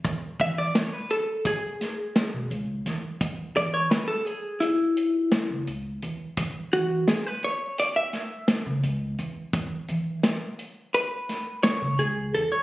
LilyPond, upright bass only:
\new Staff \with { instrumentName = "Upright bass" } { \clef bass \time 9/8 \key e \mixolydian \tempo 4. = 57 e,16 r16 e8 r2 r16 b,16 cis,8 e,16 r16 | e,16 r16 e8 r2 r16 cis16 cis,8 e,16 r16 | e,16 r16 e8 r2 r16 cis16 cis,8 e,16 r16 | e,16 r16 e8 r2 r16 cis16 cis,8 e,16 r16 | }